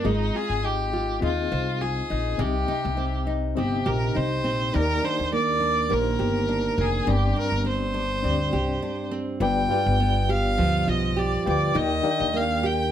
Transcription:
Already playing: G2 A#3 D4
0.03 G#1 G#3 C4 D#4 F4 G#4 D#5
0.34 F4 G#4
0.50 G#1
0.64 D#4 G4
0.93 F4
1.20 D#2 C4 D#4 F4 G#4 D#5
1.52 C2 C5
1.81 F4 G#4
2.10 A#1 D#4
2.38 C2 C3 C4 D#4 G4 D#5
2.68 D#4
2.85 C2
2.97 C4
3.27 D#4
3.55 G1 C4 D#4 G4 D#5
3.86 A#1 G4 A#4
4.15 C2 D#4 C5
4.44 A#1 C4
4.73 D#2 D#3 A#3 D#4 G4 A#4 D5
5.03 D4 C5
5.20 D#2
5.32 A#3 D5
5.60 D4
5.89 A#1 A#3 D#4 G4 A#4 C5
6.19 G1 G4
6.49 D4
6.78 F1 A#3 G#4
7.06 G1 G2 C4 D4 G4 D5
7.10 G4
7.36 D4 A#4
7.52 G1
7.65 C4 C5
7.94 D4
8.23 D2 C4 D4 G4 D5
8.53 C2 G4
8.82 D4
9.11 C4
9.40 G1 G2 F4 G4 B4 D5 G5
9.69 F4 G4 B4 D5 G5
9.86 G1
10.00 B3
10.29 G4 F5
10.58 D2 F3
10.88 B1 F4 D#5
11.16 G4 D5
11.45 D2 F4 G4 B4 D5 G5
11.74 D#2 D#3 D#4 G4 A#4 D5 D#5 G5
12.03 D4 D#4 G4 A#4 D5 F5
12.11 G5
12.20 D#2
12.34 A#3 F5
12.63 G4 G5

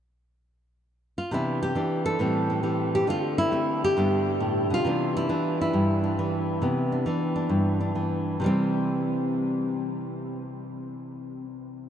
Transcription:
1.18 F4
1.31 C3 E3 B3 D4 E4
1.63 G4
1.75 E3 D4
2.06 A4
2.19 A2 E3 G3 C4
2.50 C4
2.63 E3 G4
2.95 G4
3.07 D3 A3 C4 F4
3.38 E4
3.51 A3 C4
3.84 G4
3.97 G2 D3 B3 D4
4.40 A2
4.70 B2 F4
4.85 C3 E3 B3 D4
5.17 E4
5.29 E3 D4
5.61 E4
5.73 G2
6.04 D4
6.19 E3
6.62 C3 B3
6.92 D4
7.06 E3 D4
7.36 D4
7.49 G2
7.81 D4
7.95 E3
8.40 C3 E3
8.44 G3 C4

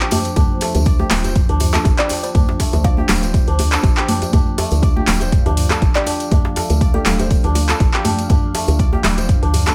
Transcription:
Already playing: F3 A3 D4 A4 C5
0.00 G4, clap
0.11 D4, mid tom, open hi-hat, tambourine, high conga, djembe tone
0.25 closed hi-hat, tambourine
0.36 D2 D4, kick, closed hi-hat, mid tom, tambourine, high conga, djembe tone
0.61 A3, open hi-hat, tambourine, djembe slap
0.75 D2, closed hi-hat, tambourine, djembe tone, high conga
0.85 D5, kick, closed hi-hat, tambourine
0.99 G4, djembe tone, high conga
1.10 D1, clap, open hi-hat, tambourine, djembe slap, high conga, low conga
1.24 C5, closed hi-hat, tambourine, djembe tone
1.35 kick, closed hi-hat, mid tom, tambourine
1.49 D2 D4, closed hi-hat
1.60 mid tom, open hi-hat, tambourine, djembe tone
1.73 A4, clap, closed hi-hat, tambourine, djembe slap, high conga
1.85 A1, kick, closed hi-hat, tambourine, djembe tone
1.99 G4 D5, clap
2.09 D4, open hi-hat, tambourine, djembe tone
2.23 C5, closed hi-hat, tambourine
2.35 D2 D4, kick, closed hi-hat, mid tom, tambourine, high conga
2.49 djembe slap, djembe tone
2.60 A3, kick, open hi-hat, tambourine, djembe slap
2.73 D2, closed hi-hat, tambourine, high conga, djembe tone
2.84 D5 F5, kick, closed hi-hat, tambourine
2.97 G4, high conga, djembe tone
3.08 D1, clap, open hi-hat, tambourine, djembe slap, high conga, low conga
3.23 C5, closed hi-hat, tambourine
3.34 kick, closed hi-hat, tambourine, djembe tone
3.47 D2 D4, closed hi-hat
3.59 open hi-hat, tambourine, high conga, djembe tone
3.72 A4, clap, closed hi-hat, tambourine
3.83 A1, kick, closed hi-hat, tambourine, djembe tone
3.97 G4, clap
4.08 D4, mid tom, open hi-hat, tambourine, high conga
4.22 closed hi-hat, tambourine, djembe tone
4.33 D2 D4 F5, kick, closed hi-hat, mid tom, tambourine, djembe tone, high conga
4.58 A3, open hi-hat, tambourine, djembe slap, djembe tone
4.71 D2, closed hi-hat, tambourine, high conga
4.82 D5, kick, closed hi-hat, tambourine, djembe tone
4.96 G4, high conga
5.07 D1, clap, open hi-hat, tambourine, djembe slap, high conga, low conga
5.20 C5, closed hi-hat, tambourine, djembe tone
5.32 kick, closed hi-hat, mid tom, tambourine
5.46 D2 D4, closed hi-hat, djembe tone
5.57 mid tom, open hi-hat, tambourine
5.70 A4, clap, closed hi-hat, tambourine, djembe slap, high conga, djembe tone
5.82 A1, kick, closed hi-hat, tambourine
5.95 G4 D5, clap
6.06 D4, open hi-hat, tambourine, djembe tone
6.20 closed hi-hat, tambourine
6.31 D2 D4, kick, closed hi-hat, mid tom, tambourine, djembe tone, high conga
6.45 djembe slap
6.56 A3, open hi-hat, tambourine, djembe slap, djembe tone
6.70 D2, closed hi-hat, tambourine, high conga
6.81 D5, kick, closed hi-hat, tambourine
6.94 G4 A4, djembe tone, high conga
7.05 D1 A4, clap, open hi-hat, tambourine, djembe slap, high conga, low conga
7.19 C5, closed hi-hat, tambourine, djembe tone
7.31 kick, closed hi-hat, tambourine
7.44 D2 D4, closed hi-hat, djembe tone
7.55 G4, open hi-hat, tambourine, high conga
7.69 A4, clap, closed hi-hat, tambourine
7.80 A1, kick, closed hi-hat, tambourine, djembe tone
7.94 G4, clap
8.05 D4, mid tom, open hi-hat, tambourine, djembe tone, high conga
8.19 closed hi-hat, tambourine
8.29 D2 D4, kick, closed hi-hat, mid tom, tambourine, high conga, djembe tone
8.55 A3, open hi-hat, tambourine, djembe slap
8.68 D2, closed hi-hat, tambourine, djembe tone, high conga
8.79 D5, kick, closed hi-hat, tambourine
8.93 G4, djembe tone, high conga
9.03 D1, clap, open hi-hat, tambourine, djembe slap, high conga, low conga
9.18 C5, closed hi-hat, tambourine, djembe tone
9.29 kick, closed hi-hat, mid tom, tambourine
9.42 D2 D4, closed hi-hat
9.54 mid tom, open hi-hat, tambourine, djembe tone
9.67 A4, clap, closed hi-hat, tambourine, djembe slap, high conga

